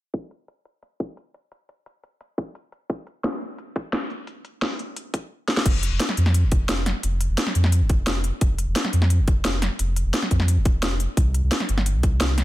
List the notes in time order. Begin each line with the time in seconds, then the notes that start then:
0.14 kick, closed hi-hat
0.31 closed hi-hat
0.48 closed hi-hat
0.65 closed hi-hat
0.83 closed hi-hat
1.00 kick, closed hi-hat
1.17 closed hi-hat
1.34 closed hi-hat
1.52 closed hi-hat
1.69 closed hi-hat
1.86 closed hi-hat
2.04 closed hi-hat
2.21 closed hi-hat
2.38 kick, closed hi-hat
2.55 closed hi-hat
2.72 closed hi-hat
2.90 kick, closed hi-hat
3.07 closed hi-hat
3.24 snare, closed hi-hat
3.41 closed hi-hat
3.58 closed hi-hat
3.76 kick, closed hi-hat
3.93 snare, closed hi-hat
4.10 closed hi-hat
4.27 closed hi-hat
4.45 closed hi-hat
4.62 snare, closed hi-hat
4.79 closed hi-hat
4.96 closed hi-hat
5.14 kick, closed hi-hat
5.48 snare
5.57 snare
5.66 F1, kick, closed hi-hat, crash
5.83 closed hi-hat
5.92 F1
6.00 snare, closed hi-hat
6.09 snare
6.17 F2, closed hi-hat
6.26 snare
6.34 closed hi-hat
6.43 F1
6.52 kick, closed hi-hat
6.69 F1, snare, closed hi-hat
6.86 snare, closed hi-hat
7.03 F1, closed hi-hat
7.21 closed hi-hat
7.29 F1
7.38 snare, closed hi-hat
7.47 snare
7.55 F2, closed hi-hat
7.64 snare
7.72 closed hi-hat
7.81 F1
7.90 kick, closed hi-hat
8.07 F1, snare, closed hi-hat
8.24 closed hi-hat
8.41 F1, kick, closed hi-hat
8.59 closed hi-hat
8.67 F1
8.76 snare, closed hi-hat
8.85 snare
8.93 F2, closed hi-hat
9.02 snare
9.10 closed hi-hat
9.19 F1
9.28 kick, closed hi-hat
9.45 F1, snare, closed hi-hat
9.62 snare, closed hi-hat
9.79 F1, closed hi-hat
9.96 closed hi-hat
10.05 F1
10.14 snare, closed hi-hat
10.22 snare
10.31 F2, kick, closed hi-hat
10.40 snare
10.48 closed hi-hat
10.57 D#1
10.65 kick, closed hi-hat
10.83 F1, snare, closed hi-hat
11.00 closed hi-hat
11.17 C2, kick, closed hi-hat
11.34 closed hi-hat
11.43 C2
11.52 snare, closed hi-hat
11.60 snare
11.69 G1, closed hi-hat
11.78 snare
11.86 closed hi-hat
11.95 C2
12.03 kick, closed hi-hat
12.21 C2, snare, closed hi-hat
12.38 snare, closed hi-hat